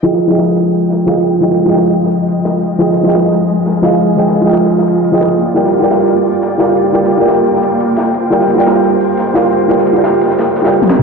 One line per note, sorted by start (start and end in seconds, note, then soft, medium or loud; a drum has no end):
0.03 0.26 F3 medium
0.03 5.35 G#3 medium
0.03 0.27 F4 medium
0.03 11.03 F4 medium
0.03 0.28 G#4 medium
0.03 5.35 D#5 medium
0.03 0.29 D#5 medium
0.03 2.77 G5 medium
0.03 0.29 G5 medium
0.03 closed hi-hat medium
0.03 ride medium
0.13 snare soft
0.21 closed hi-hat medium
0.21 ride medium
0.27 1.04 F3 medium
0.27 1.05 F4 medium
0.27 1.06 G#4 medium
0.27 ride soft
0.32 1.06 D#5 medium
0.32 1.07 G5 loud
0.39 snare loud
0.39 closed hi-hat medium
0.39 ride medium
0.48 snare soft
0.55 snare soft
0.55 closed hi-hat medium
0.55 ride medium
0.73 closed hi-hat medium
0.73 open hi-hat medium
0.90 snare soft
0.90 closed hi-hat medium
0.90 ride medium
1.06 1.39 F3 medium
1.06 1.40 F4 medium
1.06 1.40 G#4 medium
1.06 1.40 D#5 medium
1.06 1.41 F5 medium
1.06 snare loud
1.06 closed hi-hat medium
1.06 ride medium
1.17 snare soft
1.24 closed hi-hat medium
1.24 ride medium
1.41 1.64 F3 medium
1.41 1.65 F4 medium
1.41 1.66 G#4 medium
1.41 1.67 D#5 medium
1.41 1.67 G5 medium
1.41 closed hi-hat medium
1.41 ride medium
1.50 snare soft
1.59 closed hi-hat medium
1.59 ride medium
1.65 2.77 F3 medium
1.65 2.77 F4 medium
1.65 2.78 G#4 medium
1.70 2.79 D#5 medium
1.70 2.79 G5 medium
1.75 snare loud
1.75 closed hi-hat medium
1.75 ride medium
1.93 closed hi-hat medium
1.93 ride medium
2.03 snare soft
2.11 closed hi-hat medium
2.11 ride medium
2.28 closed hi-hat medium
2.28 ride medium
2.45 snare loud
2.45 closed hi-hat medium
2.45 ride medium
2.54 ride soft
2.63 closed hi-hat medium
2.63 ride medium
2.78 3.02 F3 medium
2.78 3.03 F4 medium
2.78 3.04 G#4 medium
2.78 5.36 G#4 medium
2.78 3.04 D#5 medium
2.78 3.05 G5 loud
2.78 closed hi-hat medium
2.78 ride medium
2.89 snare soft
2.97 closed hi-hat medium
2.97 ride medium
3.03 3.80 F3 medium
3.03 3.81 F4 medium
3.03 3.82 G#4 medium
3.03 ride soft
3.08 3.82 D#5 medium
3.08 3.83 G5 loud
3.15 snare loud
3.15 closed hi-hat medium
3.15 ride medium
3.24 snare soft
3.31 snare soft
3.31 closed hi-hat medium
3.31 ride medium
3.49 closed hi-hat medium
3.49 open hi-hat medium
3.66 snare soft
3.66 closed hi-hat medium
3.66 ride medium
3.82 4.15 F3 medium
3.82 4.16 F4 medium
3.82 4.16 G#4 medium
3.82 4.16 D#5 medium
3.82 4.17 F5 medium
3.82 snare loud
3.82 closed hi-hat medium
3.82 ride medium
3.93 snare soft
4.00 closed hi-hat medium
4.00 ride medium
4.17 4.40 F3 medium
4.17 4.41 F4 medium
4.17 4.42 G#4 medium
4.17 4.42 D#5 medium
4.17 4.43 G5 medium
4.17 closed hi-hat medium
4.17 ride medium
4.27 snare soft
4.35 closed hi-hat medium
4.35 ride medium
4.41 5.10 F3 medium
4.41 5.11 F4 medium
4.41 5.11 G#4 medium
4.46 5.12 D#5 medium
4.46 5.13 G5 medium
4.52 snare loud
4.52 closed hi-hat medium
4.52 ride medium
4.70 closed hi-hat medium
4.70 ride medium
4.78 snare medium
4.87 closed hi-hat medium
4.87 ride medium
5.04 closed hi-hat medium
5.04 ride medium
5.12 5.37 F3 medium
5.12 5.37 F4 medium
5.12 5.38 G#4 medium
5.12 5.38 D#5 medium
5.12 5.38 G5 medium
5.21 snare loud
5.21 closed hi-hat medium
5.21 ride medium
5.31 ride soft
5.39 11.03 A#3 medium
5.39 8.12 D5 medium
5.39 11.03 G5 medium
5.39 closed hi-hat medium
5.39 ride medium
5.54 5.78 G3 medium
5.54 5.79 F4 medium
5.54 5.80 A#4 medium
5.54 5.80 D5 medium
5.54 5.81 G5 loud
5.54 closed hi-hat medium
5.54 ride medium
5.65 snare soft
5.73 closed hi-hat medium
5.73 ride medium
5.79 6.56 G3 medium
5.79 6.57 F4 medium
5.79 6.57 A#4 medium
5.79 ride soft
5.84 6.58 D5 medium
5.84 6.59 G5 loud
5.90 snare loud
5.90 closed hi-hat medium
5.90 ride medium
5.99 snare soft
6.08 snare soft
6.08 closed hi-hat medium
6.08 ride medium
6.25 closed hi-hat medium
6.25 open hi-hat medium
6.42 snare soft
6.42 closed hi-hat medium
6.42 ride medium
6.58 6.91 G3 medium
6.58 6.91 F4 medium
6.58 6.92 A#4 medium
6.58 6.92 D5 medium
6.58 6.93 F5 medium
6.58 snare loud
6.58 closed hi-hat medium
6.58 ride medium
6.69 snare soft
6.77 closed hi-hat medium
6.77 ride medium
6.92 7.16 G3 medium
6.92 7.17 F4 medium
6.92 7.18 A#4 medium
6.92 7.18 D5 medium
6.92 7.19 G5 medium
6.92 closed hi-hat medium
6.92 ride medium
7.03 snare soft
7.11 closed hi-hat medium
7.11 ride medium
7.17 8.28 G3 medium
7.17 8.29 F4 medium
7.17 8.30 A#4 medium
7.22 8.31 D5 medium
7.22 8.31 G5 medium
7.27 snare loud
7.27 closed hi-hat medium
7.27 ride medium
7.46 closed hi-hat medium
7.46 ride medium
7.55 snare soft
7.63 closed hi-hat medium
7.63 ride medium
7.80 closed hi-hat medium
7.80 ride medium
7.96 snare loud
7.96 closed hi-hat medium
7.96 ride medium
8.06 ride soft
8.14 11.03 C5 medium
8.14 closed hi-hat medium
8.14 ride medium
8.30 8.53 G3 medium
8.30 8.55 F4 medium
8.30 8.56 A#4 medium
8.30 8.56 D5 medium
8.30 8.56 G5 loud
8.30 closed hi-hat medium
8.30 ride medium
8.41 snare soft
8.49 closed hi-hat medium
8.49 ride medium
8.55 9.32 G3 medium
8.55 9.33 F4 medium
8.55 9.33 A#4 medium
8.55 ride soft
8.59 9.34 D5 medium
8.59 9.35 G5 loud
8.66 snare loud
8.66 closed hi-hat medium
8.66 ride medium
8.75 snare soft
8.83 snare soft
8.83 closed hi-hat medium
8.83 ride medium
9.00 closed hi-hat medium
9.00 open hi-hat medium
9.17 snare soft
9.17 closed hi-hat medium
9.17 ride medium
9.34 9.67 G3 medium
9.34 9.67 F4 medium
9.34 9.68 A#4 medium
9.34 9.68 D5 medium
9.34 9.68 F5 medium
9.34 snare loud
9.34 closed hi-hat medium
9.34 ride medium
9.44 snare soft
9.52 closed hi-hat medium
9.52 ride medium
9.68 9.91 G3 medium
9.68 9.93 F4 medium
9.68 9.94 A#4 medium
9.68 9.94 D5 medium
9.68 9.94 G5 medium
9.68 closed hi-hat medium
9.68 ride medium
9.78 snare soft
9.87 closed hi-hat medium
9.87 ride medium
9.93 10.60 G3 medium
9.93 10.62 F4 medium
9.93 10.63 A#4 medium
9.97 10.64 D5 medium
9.97 10.64 G5 medium
10.04 snare loud
10.04 closed hi-hat medium
10.04 ride medium
10.21 snare soft
10.21 closed hi-hat medium
10.21 ride medium
10.30 snare soft
10.38 snare loud
10.38 closed hi-hat loud
10.38 ride medium
10.55 snare soft
10.55 closed hi-hat medium
10.55 ride medium
10.62 11.03 G3 medium
10.62 11.03 F4 medium
10.62 11.03 A#4 medium
10.62 snare loud
10.62 ride medium
10.66 11.03 D5 medium
10.66 11.03 G5 medium
10.73 closed hi-hat medium
10.82 snare soft
10.82 high tom soft
10.82 ride medium
10.90 snare loud
10.90 snare medium
10.90 closed hi-hat medium
10.90 ride medium
10.99 mid tom medium